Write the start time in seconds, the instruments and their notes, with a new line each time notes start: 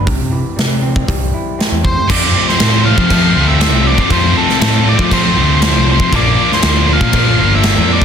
0.05 picked electric bass C2, clean electric guitar C3, kick, open hi-hat
0.19 picked electric bass C3
0.31 clean electric guitar E3
0.56 picked electric bass C3, clean electric guitar G3, snare, open hi-hat
0.82 clean electric guitar C4
0.96 kick
1.08 picked electric bass C2, clean electric guitar G3, kick, open hi-hat
1.34 clean electric guitar E4
1.59 clean electric guitar C4, snare, open hi-hat
1.72 picked electric bass E2
1.84 clean electric guitar C5, lead electric guitar C5, kick
2.09 overdriven electric guitar F2 C3 F3 A3 C4 F4, picked electric bass F2, lead electric guitar D5, kick, crash
2.35 distorted electric guitar F3 A3 C4
2.49 lead electric guitar C5, snare
2.58 picked electric bass A2, distorted electric guitar C3, overdriven electric guitar F3 A3 C4 F4, snare, crash
2.85 overdriven electric guitar F3 A3 C4 F4, lead electric guitar F5
2.98 picked electric bass F3, kick
3.10 distorted electric guitar F2 C3 F3 A3 C4 F4, kick, crash
3.35 picked electric bass D2, overdriven electric guitar F3 A3 C4 F4
3.48 lead electric guitar E5
3.59 overdriven electric guitar F2 C3 F3 A3 C4 F4, snare, crash
3.73 picked electric bass C2
3.87 lead electric guitar D5
3.98 kick
4.09 overdriven electric guitar F2 C3 F3 A3 C4 F4, picked electric bass F2, lead electric guitar C5, kick, crash
4.34 distorted electric guitar F3 A3 C4, lead electric guitar A4
4.49 snare
4.59 picked electric bass A2, distorted electric guitar C3, overdriven electric guitar F3 A3 C4 F4, lead electric guitar A4, snare, crash
4.85 overdriven electric guitar F3 A3 C4 F4, lead electric guitar D5
4.99 picked electric bass F3, kick
5.11 distorted electric guitar F2 C3 F3 A3 C4 F4, lead electric guitar C5, kick, crash
5.36 picked electric bass D2, overdriven electric guitar F3 A3 C4 F4
5.61 overdriven electric guitar F2 C3 F3 A3 C4 F4, lead electric guitar C5, snare, crash
5.75 picked electric bass C2
5.92 lead electric guitar C5
6.00 kick
6.11 picked electric bass A#1, overdriven electric guitar A#2 F3 A#3 D4 F4, kick, crash
6.16 lead electric guitar D5
6.36 distorted electric guitar F3 A#3 D4
6.52 lead electric guitar C5, snare
6.61 picked electric bass D2, distorted electric guitar A#2, overdriven electric guitar F3 A#3 D4 F4, snare, crash
6.88 distorted electric guitar F3, overdriven electric guitar A#3 D4 F4
6.93 lead electric guitar F5
7.01 picked electric bass A#2, kick
7.13 distorted electric guitar A#2 F3 A#3 D4, kick, crash
7.17 distorted electric guitar F4
7.39 picked electric bass G1, distorted electric guitar F3, overdriven electric guitar A#3 D4 F4
7.55 lead electric guitar E5
7.63 overdriven electric guitar A#2 F3 A#3 D4 F4, snare, crash
7.77 picked electric bass F2
7.93 lead electric guitar D5
8.02 kick